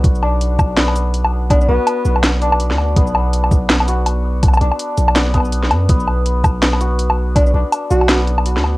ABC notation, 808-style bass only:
X:1
M:4/4
L:1/16
Q:"Swing 16ths" 1/4=164
K:Bm
V:1 name="808-style bass" clef=bass
B,,,6 B,,,8- B,,,2- | B,,,2 B,,, z3 B,,,6- B,,, D,,3 | B,,,6 B,,,8- B,,,2- | B,,,2 B,,, z3 B,,,8 F,,2 |
B,,,6 B,,,8- B,,,2- | B,,,2 B,,, z3 B,,,6- B,,, D,,3 |]